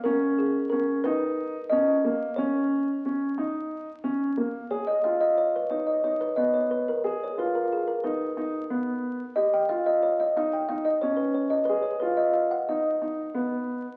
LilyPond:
<<
  \new Staff \with { instrumentName = "Kalimba" } { \time 7/8 \key ces \lydian \tempo 4 = 90 bes'8 aes'8 bes'8 ces''4 ees''4 | des''2. r8 | des''16 ees''16 f''16 ees''16 des''16 ces''16 des''16 ees''16 des''16 ces''16 ees''16 des''16 ces''16 bes'16 | aes'16 des''16 ces''16 bes'16 aes'16 bes'16 ces''4. r8 |
ees''16 g''16 f''16 ees''16 des''16 ees''16 f''16 g''16 f''16 ees''16 des''16 ces''16 des''16 ees''16 | ces''16 des''16 ces''16 ees''16 f''16 ges''16 ees''4. r8 | }
  \new Staff \with { instrumentName = "Grand piano" } { \time 7/8 \key ces \lydian des'4 des'8 ees'4 des'8 bes8 | des'4 des'8 ees'4 des'8 bes8 | aes'8 f'4 ees'8 ees'8 ces'4 | aes'8 f'4 ees'8 ees'8 ces'4 |
g'8 f'4 ees'8 ees'8 des'4 | aes'8 f'4 ees'8 ees'8 ces'4 | }
>>